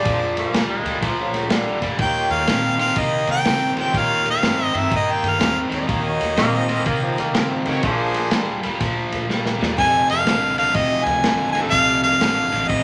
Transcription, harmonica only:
Already playing: D5
2.01 G5
2.32 F5
2.80 F5
2.99 D#5
3.31 G5
3.80 G5
3.98 F5
4.30 F5
4.65 D#5
4.77 E5
4.96 D#5
5.12 G5
5.30 F5
5.75 D#5
9.79 G#5
10.10 F5
10.58 F5
10.75 D#5
11.05 G#5
11.52 G#5
11.71 F5
12.03 F5
12.68 D#5

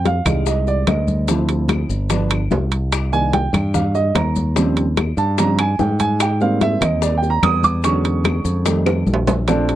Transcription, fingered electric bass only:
Already playing: F2
0.25 C2
0.87 D2
1.89 G1
2.51 C2
3.53 G2
4.15 D#2
5.17 G2
5.79 G#2
6.81 D#2
7.43 E2
8.45 F2
9.06 A#1

